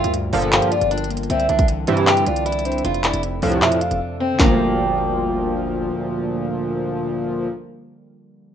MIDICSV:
0, 0, Header, 1, 8, 480
1, 0, Start_track
1, 0, Tempo, 387097
1, 1610, Time_signature, 4, 2, 24, 8
1, 10600, End_track
2, 0, Start_track
2, 0, Title_t, "Soft synth lead"
2, 0, Program_c, 0, 80
2, 0, Note_on_c, 0, 76, 85
2, 159, Note_off_c, 0, 76, 0
2, 652, Note_on_c, 0, 77, 84
2, 879, Note_off_c, 0, 77, 0
2, 892, Note_on_c, 0, 74, 86
2, 1119, Note_off_c, 0, 74, 0
2, 1610, Note_on_c, 0, 76, 107
2, 2061, Note_off_c, 0, 76, 0
2, 2812, Note_on_c, 0, 74, 86
2, 3263, Note_off_c, 0, 74, 0
2, 3292, Note_on_c, 0, 72, 88
2, 3519, Note_off_c, 0, 72, 0
2, 3770, Note_on_c, 0, 74, 82
2, 3998, Note_off_c, 0, 74, 0
2, 4489, Note_on_c, 0, 76, 84
2, 4717, Note_off_c, 0, 76, 0
2, 4730, Note_on_c, 0, 77, 81
2, 4958, Note_off_c, 0, 77, 0
2, 5451, Note_on_c, 0, 79, 97
2, 6841, Note_off_c, 0, 79, 0
2, 10600, End_track
3, 0, Start_track
3, 0, Title_t, "Steel-string acoustic guitar"
3, 0, Program_c, 1, 25
3, 0, Note_on_c, 1, 65, 85
3, 147, Note_off_c, 1, 65, 0
3, 407, Note_on_c, 1, 69, 85
3, 624, Note_off_c, 1, 69, 0
3, 648, Note_on_c, 1, 67, 86
3, 865, Note_off_c, 1, 67, 0
3, 892, Note_on_c, 1, 65, 82
3, 1107, Note_off_c, 1, 65, 0
3, 1129, Note_on_c, 1, 62, 90
3, 1346, Note_off_c, 1, 62, 0
3, 1608, Note_on_c, 1, 60, 91
3, 1825, Note_off_c, 1, 60, 0
3, 1847, Note_on_c, 1, 62, 82
3, 2064, Note_off_c, 1, 62, 0
3, 2332, Note_on_c, 1, 64, 75
3, 2547, Note_off_c, 1, 64, 0
3, 2571, Note_on_c, 1, 67, 90
3, 2786, Note_off_c, 1, 67, 0
3, 2811, Note_on_c, 1, 65, 85
3, 3027, Note_off_c, 1, 65, 0
3, 3048, Note_on_c, 1, 64, 94
3, 3500, Note_off_c, 1, 64, 0
3, 3529, Note_on_c, 1, 65, 85
3, 3746, Note_off_c, 1, 65, 0
3, 3763, Note_on_c, 1, 64, 86
3, 3982, Note_off_c, 1, 64, 0
3, 4248, Note_on_c, 1, 62, 85
3, 5160, Note_off_c, 1, 62, 0
3, 5212, Note_on_c, 1, 60, 82
3, 5427, Note_off_c, 1, 60, 0
3, 5450, Note_on_c, 1, 58, 91
3, 6840, Note_off_c, 1, 58, 0
3, 10600, End_track
4, 0, Start_track
4, 0, Title_t, "Analog synth pad"
4, 0, Program_c, 2, 89
4, 0, Note_on_c, 2, 55, 77
4, 0, Note_on_c, 2, 65, 69
4, 0, Note_on_c, 2, 70, 89
4, 1572, Note_off_c, 2, 55, 0
4, 1572, Note_off_c, 2, 65, 0
4, 1572, Note_off_c, 2, 70, 0
4, 1611, Note_on_c, 2, 60, 71
4, 1612, Note_on_c, 2, 52, 80
4, 1612, Note_on_c, 2, 62, 88
4, 3512, Note_off_c, 2, 52, 0
4, 3512, Note_off_c, 2, 62, 0
4, 3531, Note_on_c, 2, 69, 84
4, 3532, Note_on_c, 2, 53, 76
4, 5412, Note_off_c, 2, 60, 0
4, 5431, Note_off_c, 2, 69, 0
4, 5432, Note_off_c, 2, 53, 0
4, 5449, Note_on_c, 2, 65, 71
4, 5449, Note_on_c, 2, 70, 87
4, 5450, Note_on_c, 2, 55, 77
4, 9274, Note_off_c, 2, 55, 0
4, 9274, Note_off_c, 2, 65, 0
4, 9274, Note_off_c, 2, 70, 0
4, 10600, End_track
5, 0, Start_track
5, 0, Title_t, "Synth keys"
5, 0, Program_c, 3, 88
5, 0, Control_c, 3, 64, 127
5, 0, Note_on_c, 3, 43, 86
5, 0, Note_on_c, 3, 50, 85
5, 0, Note_on_c, 3, 53, 86
5, 0, Note_on_c, 3, 58, 91
5, 156, Note_off_c, 3, 43, 0
5, 171, Note_on_c, 3, 43, 83
5, 411, Note_off_c, 3, 53, 0
5, 411, Note_on_c, 3, 53, 92
5, 635, Note_off_c, 3, 43, 0
5, 647, Note_off_c, 3, 58, 0
5, 650, Note_on_c, 3, 43, 92
5, 1133, Note_off_c, 3, 50, 0
5, 1366, Note_on_c, 3, 58, 89
5, 1608, Note_off_c, 3, 58, 0
5, 1610, Note_off_c, 3, 43, 0
5, 1610, Note_on_c, 3, 50, 101
5, 1611, Note_off_c, 3, 53, 0
5, 1624, Control_c, 3, 64, 0
5, 1820, Control_c, 3, 64, 127
5, 1852, Note_on_c, 3, 52, 81
5, 2077, Note_off_c, 3, 50, 0
5, 2092, Note_on_c, 3, 50, 92
5, 2331, Note_on_c, 3, 55, 89
5, 2561, Note_off_c, 3, 50, 0
5, 2576, Note_on_c, 3, 50, 88
5, 3051, Note_off_c, 3, 52, 0
5, 3291, Note_on_c, 3, 62, 88
5, 3531, Note_off_c, 3, 55, 0
5, 3531, Note_off_c, 3, 62, 0
5, 3533, Note_off_c, 3, 50, 0
5, 3535, Note_on_c, 3, 41, 91
5, 3548, Control_c, 3, 64, 0
5, 3729, Control_c, 3, 64, 127
5, 3778, Note_on_c, 3, 48, 86
5, 3995, Note_off_c, 3, 41, 0
5, 4009, Note_on_c, 3, 41, 78
5, 4242, Note_on_c, 3, 53, 84
5, 4478, Note_off_c, 3, 41, 0
5, 4493, Note_on_c, 3, 41, 91
5, 4974, Note_off_c, 3, 48, 0
5, 5209, Note_on_c, 3, 60, 89
5, 5375, Note_on_c, 3, 50, 82
5, 5409, Note_off_c, 3, 53, 0
5, 5424, Note_on_c, 3, 53, 77
5, 5450, Note_off_c, 3, 60, 0
5, 5452, Note_off_c, 3, 41, 0
5, 5465, Control_c, 3, 64, 0
5, 5475, Note_on_c, 3, 55, 79
5, 5524, Note_on_c, 3, 58, 94
5, 5716, Control_c, 3, 64, 127
5, 9199, Note_off_c, 3, 50, 0
5, 9249, Note_off_c, 3, 53, 0
5, 9299, Note_off_c, 3, 55, 0
5, 9349, Note_off_c, 3, 58, 0
5, 10600, End_track
6, 0, Start_track
6, 0, Title_t, "Analog polysynth"
6, 0, Program_c, 4, 90
6, 411, Note_on_c, 4, 46, 95
6, 411, Note_on_c, 4, 50, 94
6, 411, Note_on_c, 4, 53, 115
6, 866, Note_off_c, 4, 50, 0
6, 867, Note_off_c, 4, 46, 0
6, 867, Note_off_c, 4, 53, 0
6, 2330, Note_on_c, 4, 43, 116
6, 2330, Note_on_c, 4, 48, 103
6, 2330, Note_on_c, 4, 52, 116
6, 2786, Note_off_c, 4, 43, 0
6, 2786, Note_off_c, 4, 48, 0
6, 2786, Note_off_c, 4, 52, 0
6, 4250, Note_on_c, 4, 45, 104
6, 4250, Note_on_c, 4, 48, 103
6, 4250, Note_on_c, 4, 53, 114
6, 4706, Note_off_c, 4, 45, 0
6, 4706, Note_off_c, 4, 48, 0
6, 4706, Note_off_c, 4, 53, 0
6, 5450, Note_on_c, 4, 53, 105
6, 5451, Note_on_c, 4, 38, 97
6, 5451, Note_on_c, 4, 46, 100
6, 9275, Note_off_c, 4, 38, 0
6, 9275, Note_off_c, 4, 46, 0
6, 9275, Note_off_c, 4, 53, 0
6, 10600, End_track
7, 0, Start_track
7, 0, Title_t, "808-style bass"
7, 0, Program_c, 5, 38
7, 51, Note_on_c, 5, 38, 102
7, 396, Note_off_c, 5, 38, 0
7, 411, Note_on_c, 5, 31, 108
7, 756, Note_off_c, 5, 31, 0
7, 1010, Note_on_c, 5, 31, 108
7, 1586, Note_off_c, 5, 31, 0
7, 1610, Note_on_c, 5, 36, 116
7, 1840, Note_off_c, 5, 36, 0
7, 1850, Note_on_c, 5, 36, 110
7, 2311, Note_off_c, 5, 36, 0
7, 2330, Note_on_c, 5, 43, 105
7, 2791, Note_off_c, 5, 43, 0
7, 2810, Note_on_c, 5, 36, 110
7, 3501, Note_off_c, 5, 36, 0
7, 3529, Note_on_c, 5, 29, 113
7, 3875, Note_off_c, 5, 29, 0
7, 3890, Note_on_c, 5, 29, 101
7, 4235, Note_off_c, 5, 29, 0
7, 4250, Note_on_c, 5, 36, 111
7, 4490, Note_on_c, 5, 48, 101
7, 4509, Note_off_c, 5, 36, 0
7, 4604, Note_off_c, 5, 48, 0
7, 4850, Note_on_c, 5, 29, 108
7, 4970, Note_off_c, 5, 29, 0
7, 5450, Note_on_c, 5, 31, 113
7, 7320, Note_off_c, 5, 31, 0
7, 10600, End_track
8, 0, Start_track
8, 0, Title_t, "Drums"
8, 50, Note_on_c, 9, 42, 88
8, 169, Note_off_c, 9, 42, 0
8, 169, Note_on_c, 9, 42, 72
8, 293, Note_off_c, 9, 42, 0
8, 406, Note_on_c, 9, 46, 83
8, 525, Note_on_c, 9, 42, 56
8, 530, Note_off_c, 9, 46, 0
8, 649, Note_off_c, 9, 42, 0
8, 652, Note_on_c, 9, 39, 108
8, 655, Note_on_c, 9, 42, 76
8, 772, Note_off_c, 9, 42, 0
8, 772, Note_on_c, 9, 42, 58
8, 776, Note_off_c, 9, 39, 0
8, 889, Note_off_c, 9, 42, 0
8, 889, Note_on_c, 9, 42, 84
8, 1009, Note_off_c, 9, 42, 0
8, 1009, Note_on_c, 9, 42, 58
8, 1130, Note_off_c, 9, 42, 0
8, 1130, Note_on_c, 9, 42, 74
8, 1210, Note_off_c, 9, 42, 0
8, 1210, Note_on_c, 9, 42, 69
8, 1290, Note_off_c, 9, 42, 0
8, 1290, Note_on_c, 9, 42, 62
8, 1370, Note_off_c, 9, 42, 0
8, 1370, Note_on_c, 9, 42, 57
8, 1450, Note_off_c, 9, 42, 0
8, 1450, Note_on_c, 9, 42, 51
8, 1529, Note_off_c, 9, 42, 0
8, 1529, Note_on_c, 9, 42, 43
8, 1611, Note_off_c, 9, 42, 0
8, 1611, Note_on_c, 9, 42, 90
8, 1731, Note_off_c, 9, 42, 0
8, 1731, Note_on_c, 9, 42, 53
8, 1847, Note_off_c, 9, 42, 0
8, 1847, Note_on_c, 9, 42, 63
8, 1968, Note_off_c, 9, 42, 0
8, 1968, Note_on_c, 9, 42, 88
8, 1970, Note_on_c, 9, 36, 99
8, 2086, Note_off_c, 9, 42, 0
8, 2086, Note_on_c, 9, 42, 73
8, 2094, Note_off_c, 9, 36, 0
8, 2210, Note_off_c, 9, 42, 0
8, 2323, Note_on_c, 9, 42, 83
8, 2441, Note_off_c, 9, 42, 0
8, 2441, Note_on_c, 9, 42, 53
8, 2565, Note_off_c, 9, 42, 0
8, 2569, Note_on_c, 9, 39, 110
8, 2573, Note_on_c, 9, 42, 73
8, 2690, Note_off_c, 9, 42, 0
8, 2690, Note_on_c, 9, 42, 57
8, 2693, Note_off_c, 9, 39, 0
8, 2808, Note_off_c, 9, 42, 0
8, 2808, Note_on_c, 9, 42, 79
8, 2929, Note_off_c, 9, 42, 0
8, 2929, Note_on_c, 9, 42, 57
8, 3050, Note_off_c, 9, 42, 0
8, 3050, Note_on_c, 9, 42, 76
8, 3130, Note_off_c, 9, 42, 0
8, 3130, Note_on_c, 9, 42, 68
8, 3209, Note_off_c, 9, 42, 0
8, 3209, Note_on_c, 9, 42, 62
8, 3288, Note_off_c, 9, 42, 0
8, 3288, Note_on_c, 9, 42, 55
8, 3369, Note_off_c, 9, 42, 0
8, 3369, Note_on_c, 9, 42, 49
8, 3449, Note_off_c, 9, 42, 0
8, 3449, Note_on_c, 9, 42, 41
8, 3529, Note_off_c, 9, 42, 0
8, 3529, Note_on_c, 9, 42, 87
8, 3650, Note_off_c, 9, 42, 0
8, 3650, Note_on_c, 9, 42, 54
8, 3766, Note_off_c, 9, 42, 0
8, 3766, Note_on_c, 9, 42, 62
8, 3768, Note_on_c, 9, 39, 98
8, 3887, Note_off_c, 9, 42, 0
8, 3887, Note_on_c, 9, 42, 87
8, 3892, Note_off_c, 9, 39, 0
8, 4006, Note_off_c, 9, 42, 0
8, 4006, Note_on_c, 9, 42, 76
8, 4130, Note_off_c, 9, 42, 0
8, 4243, Note_on_c, 9, 46, 81
8, 4362, Note_on_c, 9, 42, 57
8, 4367, Note_off_c, 9, 46, 0
8, 4486, Note_off_c, 9, 42, 0
8, 4489, Note_on_c, 9, 39, 105
8, 4493, Note_on_c, 9, 42, 75
8, 4609, Note_off_c, 9, 42, 0
8, 4609, Note_on_c, 9, 42, 58
8, 4613, Note_off_c, 9, 39, 0
8, 4728, Note_off_c, 9, 42, 0
8, 4728, Note_on_c, 9, 42, 82
8, 4849, Note_off_c, 9, 42, 0
8, 4849, Note_on_c, 9, 42, 57
8, 4973, Note_off_c, 9, 42, 0
8, 5450, Note_on_c, 9, 36, 109
8, 5450, Note_on_c, 9, 38, 107
8, 5450, Note_on_c, 9, 39, 93
8, 5574, Note_off_c, 9, 36, 0
8, 5574, Note_off_c, 9, 38, 0
8, 5574, Note_off_c, 9, 39, 0
8, 10600, End_track
0, 0, End_of_file